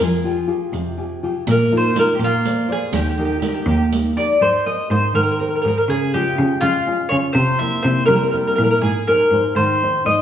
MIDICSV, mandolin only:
0, 0, Header, 1, 2, 480
1, 0, Start_track
1, 0, Time_signature, 6, 3, 24, 8
1, 0, Key_signature, -3, "major"
1, 0, Tempo, 490998
1, 4311, Key_signature, -4, "major"
1, 9989, End_track
2, 0, Start_track
2, 0, Title_t, "Mandolin"
2, 0, Program_c, 0, 25
2, 33, Note_on_c, 0, 68, 66
2, 696, Note_off_c, 0, 68, 0
2, 1474, Note_on_c, 0, 70, 90
2, 1686, Note_off_c, 0, 70, 0
2, 1732, Note_on_c, 0, 72, 89
2, 1927, Note_off_c, 0, 72, 0
2, 1945, Note_on_c, 0, 70, 81
2, 2087, Note_off_c, 0, 70, 0
2, 2100, Note_on_c, 0, 67, 53
2, 2159, Note_off_c, 0, 67, 0
2, 2191, Note_on_c, 0, 65, 90
2, 2621, Note_off_c, 0, 65, 0
2, 2661, Note_on_c, 0, 68, 92
2, 2881, Note_off_c, 0, 68, 0
2, 2885, Note_on_c, 0, 67, 74
2, 2938, Note_off_c, 0, 67, 0
2, 2950, Note_on_c, 0, 67, 55
2, 3013, Note_off_c, 0, 67, 0
2, 3024, Note_on_c, 0, 67, 52
2, 3093, Note_off_c, 0, 67, 0
2, 3105, Note_on_c, 0, 67, 39
2, 3165, Note_off_c, 0, 67, 0
2, 3177, Note_on_c, 0, 67, 49
2, 3233, Note_off_c, 0, 67, 0
2, 3245, Note_on_c, 0, 67, 37
2, 3311, Note_off_c, 0, 67, 0
2, 3320, Note_on_c, 0, 67, 39
2, 3385, Note_off_c, 0, 67, 0
2, 3405, Note_on_c, 0, 67, 47
2, 3452, Note_off_c, 0, 67, 0
2, 3463, Note_on_c, 0, 67, 50
2, 3529, Note_off_c, 0, 67, 0
2, 3540, Note_on_c, 0, 67, 39
2, 3592, Note_off_c, 0, 67, 0
2, 3604, Note_on_c, 0, 67, 61
2, 3673, Note_off_c, 0, 67, 0
2, 3685, Note_on_c, 0, 67, 51
2, 3755, Note_off_c, 0, 67, 0
2, 4076, Note_on_c, 0, 74, 89
2, 4296, Note_off_c, 0, 74, 0
2, 4320, Note_on_c, 0, 72, 77
2, 4553, Note_off_c, 0, 72, 0
2, 4557, Note_on_c, 0, 75, 84
2, 4780, Note_off_c, 0, 75, 0
2, 4798, Note_on_c, 0, 72, 89
2, 5018, Note_off_c, 0, 72, 0
2, 5033, Note_on_c, 0, 70, 90
2, 5101, Note_off_c, 0, 70, 0
2, 5113, Note_on_c, 0, 70, 63
2, 5183, Note_off_c, 0, 70, 0
2, 5196, Note_on_c, 0, 70, 62
2, 5263, Note_off_c, 0, 70, 0
2, 5274, Note_on_c, 0, 70, 44
2, 5338, Note_off_c, 0, 70, 0
2, 5362, Note_on_c, 0, 70, 42
2, 5418, Note_off_c, 0, 70, 0
2, 5430, Note_on_c, 0, 70, 48
2, 5478, Note_off_c, 0, 70, 0
2, 5490, Note_on_c, 0, 70, 61
2, 5539, Note_off_c, 0, 70, 0
2, 5550, Note_on_c, 0, 70, 63
2, 5619, Note_off_c, 0, 70, 0
2, 5646, Note_on_c, 0, 70, 72
2, 5704, Note_off_c, 0, 70, 0
2, 5765, Note_on_c, 0, 68, 99
2, 5997, Note_off_c, 0, 68, 0
2, 6001, Note_on_c, 0, 67, 89
2, 6437, Note_off_c, 0, 67, 0
2, 6458, Note_on_c, 0, 65, 106
2, 6913, Note_off_c, 0, 65, 0
2, 6929, Note_on_c, 0, 73, 94
2, 6996, Note_off_c, 0, 73, 0
2, 7164, Note_on_c, 0, 72, 104
2, 7407, Note_off_c, 0, 72, 0
2, 7418, Note_on_c, 0, 76, 105
2, 7645, Note_off_c, 0, 76, 0
2, 7649, Note_on_c, 0, 72, 99
2, 7871, Note_off_c, 0, 72, 0
2, 7875, Note_on_c, 0, 70, 98
2, 7961, Note_off_c, 0, 70, 0
2, 7973, Note_on_c, 0, 70, 70
2, 8034, Note_off_c, 0, 70, 0
2, 8045, Note_on_c, 0, 70, 52
2, 8109, Note_off_c, 0, 70, 0
2, 8120, Note_on_c, 0, 70, 46
2, 8176, Note_off_c, 0, 70, 0
2, 8187, Note_on_c, 0, 70, 43
2, 8271, Note_off_c, 0, 70, 0
2, 8283, Note_on_c, 0, 70, 54
2, 8350, Note_off_c, 0, 70, 0
2, 8362, Note_on_c, 0, 70, 71
2, 8429, Note_off_c, 0, 70, 0
2, 8441, Note_on_c, 0, 70, 58
2, 8500, Note_off_c, 0, 70, 0
2, 8512, Note_on_c, 0, 70, 73
2, 8580, Note_off_c, 0, 70, 0
2, 8618, Note_on_c, 0, 68, 90
2, 8871, Note_on_c, 0, 70, 96
2, 8880, Note_off_c, 0, 68, 0
2, 9314, Note_off_c, 0, 70, 0
2, 9347, Note_on_c, 0, 72, 103
2, 9804, Note_off_c, 0, 72, 0
2, 9834, Note_on_c, 0, 75, 105
2, 9989, Note_off_c, 0, 75, 0
2, 9989, End_track
0, 0, End_of_file